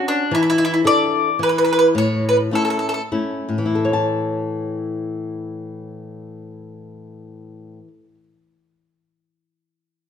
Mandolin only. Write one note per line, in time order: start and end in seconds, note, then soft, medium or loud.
0.08 0.32 D4 medium
0.35 0.41 E4 medium
0.43 0.48 E4 soft
0.50 0.57 E4 medium
0.58 0.63 E4 medium
0.65 0.72 E4 medium
0.74 0.80 E4 soft
0.87 1.38 D5 medium
1.43 1.48 B4 medium
1.49 1.57 B4 medium
1.58 1.63 B4 medium
1.65 1.71 B4 medium
1.73 1.78 B4 medium
1.79 1.86 B4 medium
1.98 2.24 C#5 medium
2.29 2.36 B4 medium
2.55 2.62 A4 medium
2.65 2.69 A4 soft
2.70 2.78 A4 soft
2.79 2.86 A4 soft
2.89 2.93 A4 medium
2.94 3.01 A4 soft